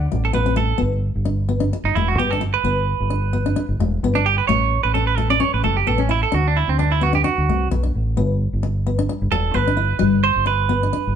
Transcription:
Already playing: trumpet D5, clarinet F#5
0.12 fingered electric bass A1, steel-string acoustic guitar A3
0.25 clean electric guitar A4
0.33 fingered electric bass A1, steel-string acoustic guitar B3, clean electric guitar B4
0.46 steel-string acoustic guitar C4
0.56 steel-string acoustic guitar A3, clean electric guitar A4
0.78 fingered electric bass G1, steel-string acoustic guitar B3
1.15 fingered electric bass G1
1.25 steel-string acoustic guitar D4
1.49 steel-string acoustic guitar B3
1.60 steel-string acoustic guitar D4
1.73 muted steel-string acoustic guitar stroke
1.84 fingered electric bass G1, clean electric guitar D#4
1.95 fingered electric bass E1, steel-string acoustic guitar A3, clean electric guitar E4
2.08 clean electric guitar F#4
2.18 fingered electric bass G1, steel-string acoustic guitar B3, clean electric guitar G4
2.30 steel-string acoustic guitar D4, clean electric guitar A4
2.41 muted steel-string acoustic guitar stroke
2.54 clean electric guitar B4
2.63 fingered electric bass G1, steel-string acoustic guitar B3
3.00 fingered electric bass G1
3.10 steel-string acoustic guitar D4
3.33 steel-string acoustic guitar B3
3.46 steel-string acoustic guitar D4
3.56 steel-string acoustic guitar D4
3.69 fingered electric bass G1
3.79 fingered electric bass E1, steel-string acoustic guitar A3
4.03 fingered electric bass G1, steel-string acoustic guitar B3
4.15 steel-string acoustic guitar D4, clean electric guitar D4
4.26 clean electric guitar G4
4.38 clean electric guitar B4
4.47 fingered electric bass A1, steel-string acoustic guitar A3, clean electric guitar C#5
4.83 fingered electric bass A1, clean electric guitar B4
4.94 steel-string acoustic guitar C#4, clean electric guitar A4
5.07 clean electric guitar B4
5.17 steel-string acoustic guitar A3, clean electric guitar A4
5.30 steel-string acoustic guitar C#4, clean electric guitar D5
5.40 steel-string acoustic guitar C#4, clean electric guitar C#5
5.54 fingered electric bass A1, clean electric guitar B4
5.63 fingered electric bass F#1, steel-string acoustic guitar A3, clean electric guitar A4
5.77 clean electric guitar G4
5.87 fingered electric bass A1, steel-string acoustic guitar B3, clean electric guitar A4
5.98 steel-string acoustic guitar C#4, clean electric guitar C#4
6.09 steel-string acoustic guitar E4, clean electric guitar E4
6.23 clean electric guitar A4
6.32 fingered electric bass D2, steel-string acoustic guitar D4, clean electric guitar F#4
6.48 clean electric guitar D4
6.57 clean electric guitar E4
6.68 fingered electric bass D2, clean electric guitar C4
6.79 steel-string acoustic guitar D4, clean electric guitar D4
6.92 clean electric guitar E4
7.01 steel-string acoustic guitar B3, clean electric guitar F#4
7.13 steel-string acoustic guitar D4, clean electric guitar G4
7.24 steel-string acoustic guitar D4, clean electric guitar F#4
7.38 fingered electric bass D2
7.49 fingered electric bass C2, steel-string acoustic guitar A3
7.71 fingered electric bass B1, muted steel-string acoustic guitar stroke
7.83 steel-string acoustic guitar D4
7.95 fingered electric bass A1
8.17 fingered electric bass G1, steel-string acoustic guitar B3
8.53 fingered electric bass G1
8.63 muted steel-string acoustic guitar stroke
8.87 steel-string acoustic guitar B3
8.99 steel-string acoustic guitar D4
9.09 steel-string acoustic guitar D4
9.22 fingered electric bass G1
9.31 fingered electric bass E1, steel-string acoustic guitar A3, clean electric guitar A4
9.54 fingered electric bass G1, steel-string acoustic guitar B3, clean electric guitar B4
9.67 steel-string acoustic guitar D4
9.77 steel-string acoustic guitar E4
9.99 fingered electric bass G1, steel-string acoustic guitar G3
10.23 clean electric guitar C5
10.36 fingered electric bass G1
10.46 clean electric guitar B4, muted steel-string acoustic guitar stroke
10.69 steel-string acoustic guitar B3
10.83 steel-string acoustic guitar D4
10.93 steel-string acoustic guitar D4
11.07 fingered electric bass G1

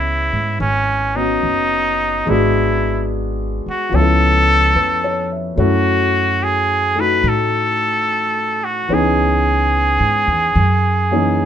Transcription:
Already playing: upright bass C#2, grand piano E3 B3 C#4 G#4 D#5, muted trumpet E4
0.33 upright bass G#2
0.60 upright bass G#1, muted trumpet C#4
1.15 grand piano B3 C#4 F#4, muted trumpet D#4
1.43 upright bass F#1
2.26 upright bass G#1, grand piano G#3 B3 D4, muted trumpet E4
2.30 grand piano F#4 G#4
3.66 muted trumpet F#4, muted upright bass stroke
3.89 upright bass C#2, grand piano F3 B3
3.94 grand piano C#4 E4, muted trumpet A4
4.00 grand piano A4
4.75 upright bass F2, grand piano B4
5.04 grand piano C#5
5.32 grand piano E5
5.56 upright bass F#2, grand piano F#3 A3 C#4
5.60 grand piano E4, muted trumpet F#4
6.43 muted trumpet G#4
6.95 grand piano A3 D#4 F#4
7.00 muted trumpet B4
7.23 upright bass A2
7.28 muted trumpet A4
8.64 muted trumpet F#4
8.88 upright bass C#2, grand piano E3 B3 C#4 D#4
8.92 grand piano G#4, muted trumpet G#4
10.00 upright bass G#2
10.27 upright bass E2
10.56 upright bass F#2
11.11 grand piano E3 A#3 C#4 D#4 G#4

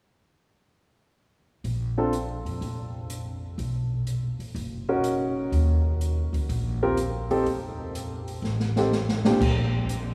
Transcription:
1.64 upright bass A#1, kick, open hi-hat
1.98 grand piano C4 D4 F4 A4
2.13 closed hi-hat
2.45 upright bass F2, open hi-hat
2.61 upright bass F1, kick, open hi-hat
3.10 closed hi-hat
3.58 upright bass B1, kick, open hi-hat
4.07 closed hi-hat
4.39 muted upright bass stroke, open hi-hat
4.55 upright bass F#1, kick, open hi-hat
4.89 grand piano C#4 D#4 F#4 A#4
5.04 closed hi-hat
5.52 upright bass D#2, kick, open hi-hat
6.01 closed hi-hat
6.33 upright bass D2, open hi-hat
6.49 upright bass A#1, kick, open hi-hat
6.83 grand piano C4 F4 G4 A#4
6.97 closed hi-hat
7.31 grand piano C4 D#4 G4 A4, open hi-hat
7.46 upright bass F1, kick, open hi-hat
7.95 closed hi-hat
8.28 open hi-hat
8.42 upright bass A1, snare
8.60 snare
8.76 grand piano C4 D#4 G4 A4, snare
8.92 snare
9.09 snare
9.25 grand piano A#2 C4 D4 F4 G4, snare
9.40 upright bass A#1, kick, crash
9.89 closed hi-hat

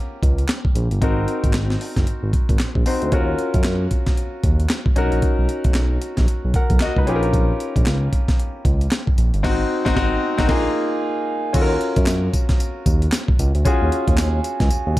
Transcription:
Already playing: grand piano C#4 F4 G4 A#4
0.23 analog synth bass C#2, kick, closed hi-hat
0.38 closed hi-hat
0.48 snare, clap, closed hi-hat
0.65 kick
0.75 analog synth bass A#1, closed hi-hat
0.91 analog synth bass G1, closed hi-hat
1.01 analog synth bass G#1, grand piano C4 D#4 F#4 A#4, kick, closed hi-hat
1.17 analog synth bass G#1
1.28 closed hi-hat
1.44 analog synth bass G#1, kick, closed hi-hat
1.53 analog synth bass G#1, snare, clap, closed hi-hat
1.70 snare
1.81 open hi-hat
1.96 analog synth bass F#1, kick, snare, closed hi-hat
2.07 analog synth bass G#1, closed hi-hat
2.23 analog synth bass G#1
2.33 kick, closed hi-hat
2.49 analog synth bass G#1, kick, closed hi-hat
2.59 analog synth bass A#1, snare, clap, closed hi-hat
2.75 analog synth bass A#1, kick
2.86 grand piano C4 D#4 F#4 C5, open hi-hat
3.02 analog synth bass D2, closed hi-hat
3.12 analog synth bass D#2, grand piano C#4 F4 F#4 A#4, kick, closed hi-hat
3.39 closed hi-hat
3.54 analog synth bass F#2, kick, closed hi-hat
3.64 analog synth bass F#2, snare, clap, closed hi-hat
3.91 kick, closed hi-hat
4.06 kick, snare, closed hi-hat
4.17 closed hi-hat
4.43 analog synth bass D#2, kick, closed hi-hat
4.60 closed hi-hat
4.69 snare, clap, closed hi-hat
4.86 kick
4.96 analog synth bass B1, grand piano C#4 D#4 F#4 A#4, closed hi-hat
5.12 analog synth bass A#1, closed hi-hat
5.22 kick, closed hi-hat
5.39 analog synth bass B1
5.49 closed hi-hat
5.64 analog synth bass B1, kick, closed hi-hat
5.74 analog synth bass B1, snare, clap, closed hi-hat
6.02 closed hi-hat
6.17 analog synth bass A#1, kick, snare, closed hi-hat
6.28 analog synth bass B1, closed hi-hat
6.45 analog synth bass B1
6.54 grand piano A#4 F#5, kick, closed hi-hat
6.70 analog synth bass B1, kick, closed hi-hat
6.80 analog synth bass C#2, grand piano F#4 D#5, snare, clap, closed hi-hat
6.97 analog synth bass C#2, grand piano D#4 B4, kick
7.07 analog synth bass A#1, grand piano C#4 F4 G4 G#4, closed hi-hat
7.15 grand piano A#4
7.23 closed hi-hat
7.33 kick, closed hi-hat
7.60 closed hi-hat
7.76 analog synth bass A#1, kick, closed hi-hat
7.86 analog synth bass C#2, snare, clap, closed hi-hat
8.13 kick, closed hi-hat
8.28 kick, snare, closed hi-hat
8.40 closed hi-hat
8.65 analog synth bass C#2, kick, closed hi-hat
8.81 closed hi-hat
8.91 snare, clap, closed hi-hat
9.07 kick
9.18 analog synth bass A#1, closed hi-hat
9.34 analog synth bass G1, closed hi-hat
9.43 analog synth bass G#1, grand piano C4 D#4 F#4, kick, snare, crash
9.85 analog synth bass G#1, grand piano C4 D#4 F#4, kick, snare
9.95 analog synth bass G#1, grand piano C4 D#4 F#4, kick, snare
10.38 analog synth bass G#1, grand piano C4 D#4 F#4, kick, snare
10.48 analog synth bass A#1, grand piano A#3 D#4 F4 G#4, kick, snare, crash
11.53 analog synth bass D#2, grand piano C#4 F4 F#4 A4, kick, closed hi-hat, crash, tambourine
11.62 grand piano A#4
11.81 closed hi-hat
11.96 analog synth bass F#2, kick, closed hi-hat
12.06 analog synth bass F#2, snare, clap, closed hi-hat, tambourine
12.34 kick, closed hi-hat, tambourine
12.49 kick, snare, closed hi-hat
12.60 closed hi-hat, tambourine
12.86 analog synth bass D#2, kick, closed hi-hat, tambourine
13.02 closed hi-hat
13.12 snare, clap, closed hi-hat, tambourine
13.28 kick
13.39 analog synth bass C#2, closed hi-hat, tambourine
13.55 analog synth bass D2, closed hi-hat
13.65 grand piano C#4 F4 F#4 G#4, kick, closed hi-hat, tambourine
13.82 analog synth bass D#2
13.92 closed hi-hat
14.08 analog synth bass D#2, kick, closed hi-hat
14.17 analog synth bass D#2, snare, clap, closed hi-hat, tambourine
14.44 closed hi-hat, tambourine
14.60 analog synth bass C#2, kick, snare, closed hi-hat
14.70 analog synth bass D#2, closed hi-hat, tambourine
14.87 analog synth bass D#2

